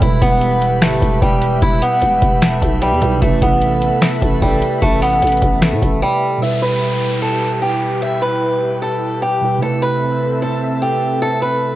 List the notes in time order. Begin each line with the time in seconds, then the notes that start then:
Already playing: B2 B5
0.00 E1 G3 E4 G4 B4 E5, kick, closed hi-hat
0.05 B4
0.22 E1 B3, kick, closed hi-hat
0.41 closed hi-hat
0.62 closed hi-hat
0.82 G1 A3, finger snap, snare, closed hi-hat
1.02 E1, kick, closed hi-hat
1.22 E1 G3, kick
1.42 closed hi-hat
1.62 E1 E4, kick, closed hi-hat
1.82 B3, closed hi-hat
2.01 E1, closed hi-hat
2.22 E1, kick, closed hi-hat
2.42 A3, finger snap, snare, closed hi-hat
2.62 B1, kick, closed hi-hat
2.82 G3, closed hi-hat
2.92 E2
3.01 B1 B2 G3 E4 B4, closed hi-hat
3.18 A1 C3 A3 A4 B4 B5, kick, closed hi-hat
3.23 E4 B4
3.42 A1 B3, kick, closed hi-hat
3.61 closed hi-hat
3.82 closed hi-hat
4.02 A3, finger snap, snare, closed hi-hat
4.22 A1, kick, closed hi-hat
4.42 A1 G3, kick
4.62 closed hi-hat
4.82 A1 A3, kick, closed hi-hat
5.02 B3, open hi-hat
5.22 A1, closed hi-hat
5.27 closed hi-hat
5.32 closed hi-hat
5.37 closed hi-hat
5.42 A1, kick, closed hi-hat
5.62 A3, finger snap, snare, closed hi-hat
5.72 A2
5.82 A1, kick, closed hi-hat
6.02 G3
6.38 B2 G3
6.42 E4 G4 B4 E5 G5, downlifter
6.62 B4
7.22 A4
7.62 G4
8.02 E5
8.22 B4
8.82 A4
9.22 G4
9.41 B2 G3 E4 B4
9.58 C3 A3 C4 A4 E5
9.63 E4 B4
9.82 B4
10.42 A4
10.82 G4
11.22 A4
11.42 B4